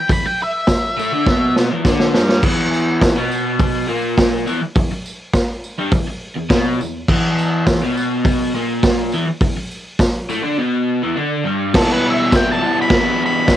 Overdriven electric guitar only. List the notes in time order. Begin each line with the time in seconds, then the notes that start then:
0.09 E2
0.25 muted overdriven electric guitar stroke
0.97 A2 A3
1.13 D3 D4
1.27 B2 B3
1.71 E2 E3
1.85 D3 D4
2.14 G2 G3
2.43 E2 E3
3.17 B2 B3
3.88 A#2 A#3
4.46 E2 E3
4.62 muted overdriven electric guitar stroke
4.77 E2
4.92 muted overdriven electric guitar stroke
5.79 G2 G3
5.93 E2
6.08 muted overdriven electric guitar stroke
6.36 E2
6.50 B2 B3
6.80 E2
7.09 E2 E3
7.82 B2 B3
8.54 A#2 A#3
9.13 E2 E3
9.27 muted overdriven electric guitar stroke
9.43 E2
9.57 muted overdriven electric guitar stroke
10.29 A2 A3
10.42 D3 D4
10.58 B2 B3
11.02 E2 E3
11.16 D3 D4
11.44 G2 G3
11.74 E2 B2 E3 G3 B3 E4
12.33 E2 B2 E3 G3 B3 E4
12.61 E2 B2 E3 G3 B3 E4
12.90 E2 B2 E3 G3 B3 E4
13.49 E2 B2 E3 G3 B3 E4